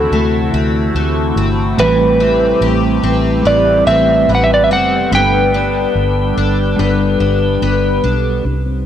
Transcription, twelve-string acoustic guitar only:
0.00 1.78 E3 medium
0.00 0.53 C4 medium
0.00 1.87 F#4 medium
0.12 0.95 A3 medium
0.54 1.37 C4 medium
0.96 2.65 A3 medium
1.37 2.20 C4 medium
1.79 5.12 E3 medium
2.20 3.02 C4 medium
2.62 6.12 G4 medium
3.03 3.86 C4 medium
3.45 4.29 B3 medium
3.87 4.70 C4 medium
4.29 5.12 B3 medium
4.71 5.21 C4 medium
5.12 6.78 B3 medium
5.54 6.36 D4 medium
6.37 7.19 D4 medium
6.79 7.61 B3 medium
7.20 8.02 D4 medium
7.62 8.45 B3 medium
8.04 8.54 D4 medium
8.45 8.64 C4 medium
8.66 8.86 C4 medium

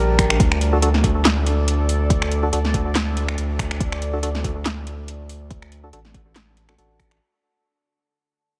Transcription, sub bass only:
0.00 0.38 A#1 medium
0.40 1.24 D2 loud
1.25 2.51 D2 loud
2.53 3.36 D2 medium
3.38 3.79 D2 medium
3.80 4.64 D2 loud
4.65 5.92 D2 loud
5.93 6.77 A1 medium
6.78 7.19 A1 medium

